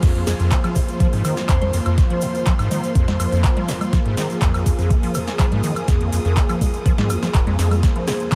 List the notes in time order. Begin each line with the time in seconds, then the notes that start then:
Already playing: F3 A#3 F4 C5 F6
0.03 F2 C5, kick, snare, closed hi-hat, crash, shaker
0.15 F2, closed hi-hat
0.27 F2 G#4, snare, open hi-hat, shaker
0.40 F2, closed hi-hat, shaker
0.51 D#2 C6, kick, clap, closed hi-hat, shaker
0.64 F3, closed hi-hat, high woodblock, shaker
0.75 G#2, kick, open hi-hat, shaker
0.89 closed hi-hat, shaker
1.00 F3, kick, closed hi-hat, shaker
1.13 G#2, open hi-hat
1.25 D#3, open hi-hat, high woodblock, shaker
1.37 snare, closed hi-hat, shaker
1.49 F2 C5, kick, clap, closed hi-hat, shaker
1.62 F2 C5, closed hi-hat, low conga
1.73 F2, open hi-hat, shaker
1.86 F2, closed hi-hat, high woodblock, shaker
1.98 D#2, kick, snare, closed hi-hat, shaker
2.10 F3, closed hi-hat
2.21 G#2, open hi-hat, shaker
2.35 closed hi-hat, shaker
2.46 F3, kick, clap, closed hi-hat, shaker
2.59 G#2, closed hi-hat, high woodblock, shaker
2.71 D#3, open hi-hat, low conga, shaker
2.84 closed hi-hat, shaker
2.95 F2, kick, closed hi-hat, shaker
3.08 F2, snare, closed hi-hat, low conga
3.20 F2, open hi-hat, high woodblock, shaker
3.32 F2, closed hi-hat, shaker
3.44 D#2, kick, clap, closed hi-hat, shaker
3.57 F3, closed hi-hat, low conga
3.68 G#2, snare, open hi-hat, shaker
3.81 closed hi-hat, low conga, high woodblock, shaker
3.93 F3 G#4, kick, snare, closed hi-hat, shaker
4.05 G#2, closed hi-hat
4.17 D#3, snare, open hi-hat, shaker
4.30 closed hi-hat, shaker
4.41 F2 D#6, kick, clap, closed hi-hat, shaker
4.54 F2, closed hi-hat, high woodblock, shaker
4.66 F2, kick, open hi-hat, shaker
4.79 F2, closed hi-hat, shaker
4.90 D#2, kick, closed hi-hat, shaker
5.03 F3, open hi-hat
5.14 G#2, open hi-hat, high woodblock, shaker
5.27 snare, closed hi-hat, shaker
5.39 F3, kick, clap, closed hi-hat, shaker
5.52 G#2, closed hi-hat, low conga
5.63 D#3, open hi-hat, shaker
5.76 closed hi-hat, high woodblock, shaker
5.88 F2, kick, snare, closed hi-hat, shaker
6.01 F2, closed hi-hat
6.12 F2, open hi-hat, shaker
6.25 F2, closed hi-hat, shaker
6.37 D#2, kick, clap, closed hi-hat, shaker
6.49 F3, closed hi-hat, high woodblock, shaker
6.61 G#2, kick, open hi-hat, low conga, shaker
6.74 closed hi-hat, shaker
6.86 F3, kick, closed hi-hat, shaker
6.98 G#2, snare, closed hi-hat, low conga
7.10 F2, open hi-hat, high woodblock, shaker
7.23 F3, snare, closed hi-hat, shaker
7.34 F1, kick, clap, closed hi-hat, shaker
7.47 F2, closed hi-hat, low conga
7.59 F2, snare, open hi-hat, shaker
7.71 closed hi-hat, low conga, high woodblock, shaker
7.83 D#2 C5, kick, snare, closed hi-hat, shaker
7.96 F3, closed hi-hat
8.07 G#2 G#4, snare, open hi-hat, shaker
8.20 closed hi-hat, shaker
8.32 F3, closed hi-hat